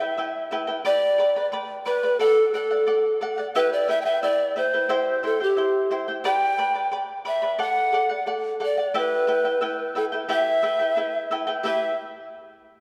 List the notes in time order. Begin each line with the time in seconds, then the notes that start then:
Already playing: E5
0.00 E4 B4 G5
0.17 E4 B4 E5 G5
0.51 E4 B4 E5 G5
0.67 E4 B4 G5
0.85 G4 B4 D5 G5 B5
1.18 B4 D5 G5 B5
1.36 B4 D5 B5
1.52 B4 D5 G5 B5
1.86 B4 D5 G5 B5
2.03 B4 D5 B5
2.19 A4 D5 F#5
2.54 A4 D5 F#5
2.71 D5 F#5
2.87 A4 D5 F#5
3.21 A4 D5 F#5
3.38 D5 F#5
3.55 E4 G4 B4 E5 G5
3.73 D5
3.88 E4 B4 E5 G5
4.02 E5 G5
4.06 E4 B4
4.23 E4 B4 D5 E5 G5
4.56 E4 B4 C5 E5 G5
4.73 E4 B4 G5
4.89 E4 G4 C5 E5 G5
5.23 E4 A4 C5 E5 G5
5.40 E4 G4 C5 G5
5.57 E4 C5 E5 G5
5.91 E4 C5 E5 G5
6.08 E4 C5 G5
6.24 G4 B4 D5 G5 B5
6.58 B4 D5 G5 B5
6.75 B4 D5 B5
6.92 B4 D5 G5 B5
7.25 B4 D5 E5 G5 B5
7.42 B4 D5 B5
7.59 A4 D5 F#5
7.93 A4 D5 F#5
8.09 D5 F#5
8.26 A4 D5 F#5
8.60 A4 D5 F#5
8.65 D5
8.78 D5 F#5
8.94 E4 G4 B4 E5 G5
9.27 E4 B4 E5 G5
9.44 E4 B4 G5
9.61 E4 B4 E5 G5
9.95 E4 A4 B4 E5 G5
10.12 E4 B4 G5
10.29 E4 G4 B4 E5 G5
10.62 E4 B4 E5 G5
10.79 E4 B4 G5
10.96 E4 B4 E5 G5
11.31 E4 B4 E5 G5
11.47 E4 B4 G5
11.63 E4 G4 B4 E5 G5